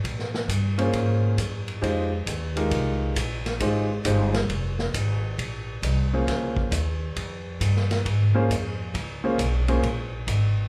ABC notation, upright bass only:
X:1
M:4/4
L:1/8
Q:"Swing" 1/4=135
K:Bbdor
V:1 name="Upright bass" clef=bass
B,,2 G,,2 A,,2 _G,,2 | F,,2 E,,2 C,,2 B,,,2 | A,,,2 G,,,2 F,,,2 A,,,2 | B,,,2 C,,2 D,,2 E,,2 |
F,,2 G,,2 A,,2 F,,2 | D,,2 =B,,,2 _B,,,2 A,,,2 |]